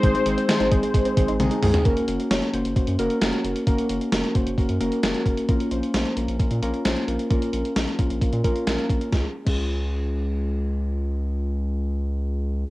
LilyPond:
<<
  \new Staff \with { instrumentName = "Analog polysynth" } { \time 4/4 \key des \major \tempo 4 = 132 c''2. r4 | r1 | r1 | r1 |
r1 | r1 | r1 | }
  \new Staff \with { instrumentName = "Synth keys" } { \time 4/4 \key des \major << { r2. bes''4 | r1 | r1 | r1 |
r1 | r1 | r1 | } \\ { <aes c' ees' aes'>8 <aes c' ees' aes'>8 <aes c' ees' aes'>8 <aes c' ees' aes'>8 <aes c' ees' aes'>8 <aes c' ees' aes'>8 <aes c' ees' aes'>8 <aes c' ees' aes'>8 | <bes des' ges' bes'>8 <bes des' ges' bes'>8 <bes des' ges' des''>8 <bes des' ges' c''>8 <bes des' ges' c''>8 <bes des' ges' bes'>8 <bes des' ges' bes'>8 <bes des' ges' bes'>8 | <bes des' ges' bes'>8 <bes des' ges' bes'>8 <bes des' ges' bes'>8 <bes des' ges' c''>8 <bes des' ges' bes'>8 <bes des' ges' bes'>8 <bes des' ges' bes'>8 <bes des' ges' bes'>8 | <bes des' f' bes'>8 <bes des' f' c''>8 <bes des' f' c''>8 <bes des' f' bes'>8 <bes des' f' bes'>8 <bes des' f' bes'>8 <bes des' f' c''>8 <bes des' f' bes'>8 |
<bes des' f' bes'>8 <bes des' f' bes'>8 <bes des' f' bes'>8 <bes des' f' bes'>8 <bes des' f' bes'>8 <bes des' f' bes'>8 <bes des' f' bes'>8 <bes des' f' bes'>8 | <aes des' f' aes'>16 r8 <aes des' f' aes'>2.~ <aes des' f' aes'>16~ | <aes des' f' aes'>1 | } >> }
  \new Staff \with { instrumentName = "Synth arpeggio sound" } { \clef bass \time 4/4 \key des \major ees16 aes16 ees16 c'16 ees16 ees'16 ees16 aes16 ees16 c'16 ees16 ees'16 ees16 aes16 ees16 c'16 | r1 | r1 | r1 |
r1 | r1 | r1 | }
  \new Staff \with { instrumentName = "Analog synth bass" } { \clef bass \time 4/4 \key des \major aes,,16 r16 aes,,16 r8 aes,,16 aes,,16 r16 aes,,16 r16 aes,,16 aes,,16 bes,,16 r16 c,16 r16 | ges,,16 r16 ges,,16 r16 ges,,16 r16 ges,,16 ges,,16 ges,,16 ges,16 ges,,16 r16 ges,,16 r16 ges,,16 r16 | ges,,16 r16 ges,,16 r16 ges,,16 r16 ges,,16 ges,,16 ges,,16 ges,16 ges,,16 r16 ges,,16 r16 ges,,16 r16 | bes,,16 r16 bes,,16 r16 bes,,16 r16 bes,,16 bes,,16 bes,,16 bes,16 bes,,16 r16 bes,,16 r16 bes,,16 r16 |
bes,,16 r16 bes,,16 r16 bes,,16 r16 bes,,16 bes,,16 bes,,16 bes,16 bes,,16 r16 bes,,16 r16 bes,,16 r16 | des,16 r8 des,2.~ des,16~ | des,1 | }
  \new DrumStaff \with { instrumentName = "Drums" } \drummode { \time 4/4 <hh bd>16 hh16 hh16 hh16 <hh sn>16 hh16 <hh bd>16 hh16 <hh bd>16 hh16 <hh bd>16 hh16 <hh tommh>16 hh16 <hho toml>16 <hh tomfh>16 | <hh bd>16 hh16 hh16 hh16 <hh sn>16 hh16 hh16 hh16 <hh bd>16 hh16 hh16 hh16 <hh sn>16 hh16 hh16 hh16 | <hh bd>16 hh16 hh16 hh16 <hh sn>16 hh16 <hh bd>16 hh16 <hh bd>16 hh16 hh16 hh16 <hh sn>16 hh16 <hh bd>16 hh16 | <hh bd>16 hh16 hh16 hh16 <hh sn>16 hh16 hh16 hh16 <hh bd>16 hh16 hh16 hh16 <hh sn>16 hh16 hh16 hh16 |
<hh bd>16 hh16 hh16 hh16 <hh sn>16 hh16 <hh bd>16 hh16 <hh bd>16 hh16 <hh bd>16 hh16 <hh sn>16 hh16 <hh bd>16 hh16 | <bd sn>8. <cymc bd>16 r4 r4 r4 | r4 r4 r4 r4 | }
>>